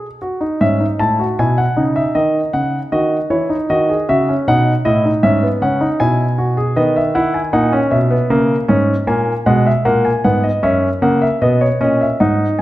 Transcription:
0.00 0.17 B2 medium
0.00 0.18 D#5 medium
0.22 0.41 F#4 medium
0.41 0.60 D#4 medium
0.61 0.85 G#2 medium
0.61 0.80 C#4 medium
0.61 0.85 E5 medium
0.80 0.99 D#4 medium
0.99 1.24 A2 medium
0.99 1.19 E4 medium
0.99 1.24 A5 medium
1.19 1.38 F#4 medium
1.39 1.63 B2 medium
1.39 1.63 E4 medium
1.39 1.57 G#5 medium
1.58 1.81 F#5 medium
1.77 2.01 C#3 medium
1.77 2.89 D#4 medium
1.96 2.15 E5 medium
2.15 2.39 D#3 medium
2.15 2.39 D#5 medium
2.53 2.78 C#3 medium
2.53 2.77 F#5 medium
2.92 3.16 D#3 medium
2.92 3.16 F#4 medium
2.92 3.16 D#5 medium
3.30 3.54 E3 medium
3.30 3.49 E4 medium
3.30 3.54 C#5 medium
3.50 3.69 D#4 medium
3.70 3.94 D#3 medium
3.70 3.88 F#4 medium
3.70 3.94 D#5 medium
3.90 4.08 G#4 medium
4.09 4.33 C#3 medium
4.09 4.27 F#4 medium
4.09 4.33 E5 medium
4.29 4.47 C#4 medium
4.48 4.71 B2 medium
4.48 4.71 D#4 medium
4.48 4.71 F#5 medium
4.85 5.09 A2 medium
4.85 5.04 E4 medium
4.85 5.09 D#5 medium
5.05 5.23 D#4 medium
5.23 5.47 G#2 medium
5.23 5.42 C#4 medium
5.23 5.47 E5 medium
5.43 5.61 B3 medium
5.62 5.86 C#3 medium
5.62 5.80 C#4 medium
5.62 5.86 F#5 medium
5.81 6.00 D#4 medium
6.00 6.75 B2 medium
6.00 6.24 E4 medium
6.00 6.75 G#5 medium
6.38 6.57 F#4 medium
6.57 6.76 G#4 medium
6.76 7.51 D#3 medium
6.76 7.00 B3 medium
6.76 6.95 D#5 medium
6.96 7.15 E5 medium
7.15 7.39 E4 medium
7.15 7.34 F#5 medium
7.34 7.53 G#5 medium
7.53 7.77 A#2 medium
7.53 7.72 D#4 medium
7.53 7.77 F#5 medium
7.72 7.96 C#4 medium
7.91 8.16 B2 medium
7.91 9.04 E5 medium
8.11 8.30 B3 medium
8.30 8.54 C#3 medium
8.30 8.54 A#3 medium
8.68 8.93 G#2 medium
8.68 8.93 C#4 medium
9.07 9.31 A#2 medium
9.07 9.32 A#3 medium
9.07 9.32 G#5 medium
9.46 9.70 B2 medium
9.46 9.70 G#3 medium
9.46 9.65 F#5 medium
9.66 9.85 E5 medium
9.85 10.09 A#2 medium
9.85 10.09 A#3 medium
9.85 10.04 F#5 medium
10.05 10.24 G#5 medium
10.24 10.49 G#2 medium
10.24 10.48 B3 medium
10.24 10.43 F#5 medium
10.44 10.62 D#5 medium
10.63 10.87 F#2 medium
10.63 10.87 C#4 medium
10.63 10.87 E5 medium
11.02 11.26 C#3 medium
11.02 11.26 A#3 medium
11.02 11.21 F#5 medium
11.22 11.41 E5 medium
11.42 11.66 B2 medium
11.42 11.66 B3 medium
11.42 11.61 D#5 medium
11.61 11.80 C#5 medium
11.80 12.05 A#2 medium
11.80 12.05 C#4 medium
11.80 12.00 D#5 medium
12.01 12.20 E5 medium
12.20 12.44 G#2 medium
12.20 12.62 D#4 medium
12.20 12.44 F#5 medium
12.59 12.62 F#2 medium
12.59 12.62 G#5 medium

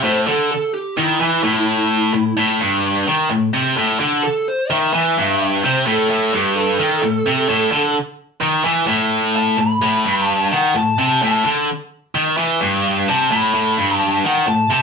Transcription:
0.03 0.26 A2 medium
0.03 0.27 C5 medium
0.27 0.50 D3 medium
0.27 0.51 A4 medium
0.52 0.74 A4 medium
0.74 0.97 G4 medium
0.97 1.20 D#3 loud
0.97 2.33 E4 medium
1.21 1.43 E3 medium
1.44 2.12 A2 medium
2.14 2.33 A2 medium
2.37 2.60 A2 medium
2.60 3.06 G2 medium
3.07 3.30 D#3 medium
3.31 3.49 A2 medium
3.53 3.76 C3 loud
3.77 3.99 A2 medium
4.00 4.23 D3 medium
4.23 4.46 A4 loud
4.48 4.70 C5 medium
4.70 4.93 D#3 medium
4.70 5.61 E5 medium
4.93 5.16 E3 medium
5.17 5.63 G2 medium
5.63 5.86 C3 loud
5.63 5.87 C5 medium
5.86 6.09 A2 medium
5.86 6.09 A4 medium
6.10 6.33 A2 medium
6.10 6.33 A4 medium
6.33 6.79 G2 medium
6.33 6.57 G4 medium
6.56 7.92 A4 medium
6.79 7.02 D#3 medium
7.03 7.22 A2 medium
7.26 7.49 C3 loud
7.49 7.72 A2 medium
7.72 7.95 D3 medium
8.41 8.65 D#3 medium
8.65 8.87 E3 medium
8.88 9.57 A2 medium
9.36 9.59 A5 medium
9.58 9.77 A2 medium
9.58 10.26 B5 medium
9.82 10.05 A2 loud
10.05 10.51 G2 medium
10.26 10.50 A5 medium
10.51 10.74 D#3 medium
10.51 10.75 F#5 medium
10.75 10.94 A2 medium
10.75 10.98 A5 medium
10.98 11.21 C3 loud
10.98 11.22 A5 medium
11.22 11.44 A2 medium
11.22 11.45 A5 medium
11.45 11.68 D3 medium
12.15 12.37 D#3 medium
12.38 12.61 E3 medium
12.61 13.07 G2 medium
13.08 13.31 C3 medium
13.08 13.31 A5 medium
13.31 13.53 A2 medium
13.31 13.94 B5 medium
13.54 13.77 A2 medium
13.78 14.23 G2 medium
13.94 14.22 A5 medium
14.24 14.47 D#3 medium
14.24 14.47 F#5 medium
14.47 14.66 A2 medium
14.47 14.70 A5 medium
14.70 14.82 C3 medium
14.70 14.82 A5 medium

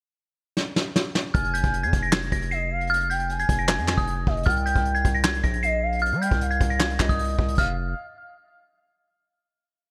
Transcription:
0.57 snare medium
0.76 snare medium
0.96 snare loud
1.15 snare loud
1.34 1.63 F1 loud
1.34 2.09 G#5 loud
1.34 1.52 F6 loud
1.34 kick loud
1.34 closed hi-hat medium
1.45 closed hi-hat medium
1.54 1.81 G6 medium
1.54 closed hi-hat medium
1.64 1.85 F1 loud
1.64 kick medium
1.64 closed hi-hat medium
1.74 closed hi-hat medium
1.83 1.93 F2 loud
1.83 2.01 G#6 medium
1.83 closed hi-hat medium
1.93 2.30 F1 loud
1.93 kick loud
1.93 closed hi-hat medium
2.03 2.11 A#6 medium
2.03 closed hi-hat soft
2.12 2.30 G#6 medium
2.12 snare loud
2.12 clap loud
2.22 closed hi-hat medium
2.32 3.45 F1 loud
2.32 2.50 A#6 medium
2.32 kick loud
2.32 closed hi-hat medium
2.42 closed hi-hat medium
2.51 2.70 D#5 medium
2.51 2.88 C7 medium
2.51 closed hi-hat medium
2.71 2.90 F5 medium
2.81 closed hi-hat soft
2.87 3.08 F6 loud
2.87 closed hi-hat medium
2.94 closed hi-hat medium
3.00 closed hi-hat medium
3.10 3.29 G5 medium
3.10 3.37 G6 medium
3.10 closed hi-hat medium
3.20 closed hi-hat medium
3.29 4.23 G#5 loud
3.29 closed hi-hat medium
3.39 3.57 G#6 medium
3.39 closed hi-hat medium
3.49 3.80 F1 loud
3.49 kick medium
3.49 closed hi-hat medium
3.59 3.67 A#6 medium
3.59 closed hi-hat soft
3.68 3.96 G#6 medium
3.68 snare loud
3.68 clap loud
3.78 3.97 F2 loud
3.78 closed hi-hat medium
3.88 snare loud
3.88 clap medium
3.97 4.26 F1 loud
3.97 4.43 D#6 medium
3.97 kick loud
3.97 closed hi-hat medium
4.07 closed hi-hat medium
4.27 4.46 F1 loud
4.27 4.45 D#5 medium
4.27 kick loud
4.37 closed hi-hat soft
4.43 4.74 C2 loud
4.43 5.20 G5 loud
4.43 4.63 F6 loud
4.43 kick loud
4.43 closed hi-hat medium
4.50 closed hi-hat medium
4.56 closed hi-hat medium
4.66 4.93 G6 medium
4.66 closed hi-hat medium
4.76 5.04 C2 loud
4.76 kick medium
4.76 closed hi-hat medium
4.85 closed hi-hat medium
4.95 5.12 G#6 medium
4.95 closed hi-hat medium
5.05 5.42 C2 loud
5.05 kick loud
5.05 closed hi-hat medium
5.15 5.23 A#6 medium
5.15 closed hi-hat soft
5.24 5.42 G#6 medium
5.24 snare loud
5.24 clap loud
5.34 closed hi-hat medium
5.44 6.13 A#1 loud
5.44 5.61 A#6 medium
5.44 kick medium
5.44 closed hi-hat medium
5.54 closed hi-hat medium
5.63 5.82 D#5 medium
5.63 6.00 C7 medium
5.63 closed hi-hat medium
5.83 6.01 F5 medium
5.92 closed hi-hat soft
5.99 6.19 F6 loud
5.99 closed hi-hat medium
6.05 closed hi-hat medium
6.12 6.30 G3 loud
6.12 closed hi-hat medium
6.22 6.40 G5 medium
6.22 6.49 G6 medium
6.22 closed hi-hat medium
6.31 6.59 C2 loud
6.31 kick medium
6.31 closed hi-hat medium
6.41 6.96 F5 medium
6.41 closed hi-hat medium
6.51 6.68 G#6 medium
6.51 closed hi-hat soft
6.61 6.98 C2 loud
6.61 kick loud
6.61 closed hi-hat medium
6.70 6.79 A#6 medium
6.70 closed hi-hat soft
6.80 7.07 G#6 medium
6.80 snare loud
6.80 clap loud
6.90 closed hi-hat medium
6.99 7.37 C2 loud
6.99 7.54 D#5 medium
6.99 kick loud
6.99 snare loud
6.99 clap medium
7.09 7.55 D#6 medium
7.09 kick loud
7.09 closed hi-hat medium
7.19 closed hi-hat medium
7.24 closed hi-hat medium
7.29 closed hi-hat medium
7.34 closed hi-hat soft
7.39 7.57 C2 loud
7.39 kick loud
7.48 closed hi-hat medium
7.55 7.94 F1 loud
7.55 7.76 F5 medium
7.55 7.76 F6 medium
7.55 kick loud
7.55 closed hi-hat medium
7.55 crash medium
7.61 closed hi-hat soft

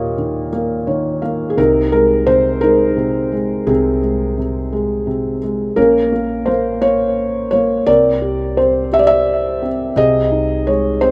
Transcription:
0.00 1.53 D#2 medium
0.00 1.54 A#2 medium
0.00 0.18 D#3 soft
0.00 0.52 A#3 soft
0.00 0.50 G4 medium
0.00 0.48 C#5 medium
0.00 1.60 D#5 medium
0.00 1.22 F5 loud
0.18 0.86 D#3 soft
0.52 1.21 A#3 medium
0.87 1.55 D#3 medium
0.87 1.20 C#5 medium
1.22 1.56 A#3 soft
1.22 1.55 F5 medium
1.50 1.57 G#4 medium
1.57 3.63 C2 medium
1.57 2.25 C3 medium
1.57 2.59 D#4 medium
1.57 1.91 A#4 medium
1.92 2.60 G#3 medium
1.92 2.28 A#4 medium
2.27 2.95 C3 soft
2.27 2.59 C5 medium
2.61 3.31 G#3 medium
2.61 3.63 D#4 medium
2.61 3.69 A#4 medium
2.97 3.65 C3 soft
3.32 4.00 G#3 soft
3.67 5.73 C2 medium
3.67 4.36 C3 medium
3.67 5.39 C4 medium
3.67 5.38 G#4 medium
4.02 4.71 G#3 soft
4.38 5.05 C3 soft
4.72 5.41 G#3 soft
5.07 5.75 C3 soft
5.43 5.76 G#3 soft
5.76 7.83 A#1 medium
5.76 6.11 A#3 medium
5.76 6.78 C#4 medium
5.76 6.49 A#4 medium
6.12 6.46 A#3 soft
6.46 6.80 A#3 soft
6.46 6.82 C5 medium
6.82 7.51 A#3 medium
6.82 7.49 C#5 medium
7.51 7.86 A#3 medium
7.51 7.87 C#5 medium
7.86 9.92 C2 medium
7.86 8.56 C4 medium
7.86 8.88 A#4 medium
7.86 8.59 D5 loud
8.22 8.91 G4 medium
8.57 9.61 C4 soft
8.57 8.93 C5 medium
8.93 9.94 G4 medium
8.93 8.99 E5 loud
8.99 9.06 D5 medium
9.07 9.67 E5 loud
9.62 9.96 C4 medium
9.96 11.11 C2 medium
9.96 11.11 C3 medium
9.96 10.98 G#4 medium
9.96 10.69 D#5 loud
10.31 11.11 D#4 soft
10.67 11.11 G#3 soft
10.67 11.03 C#5 medium
11.01 11.11 C4 medium
11.01 11.11 C5 medium

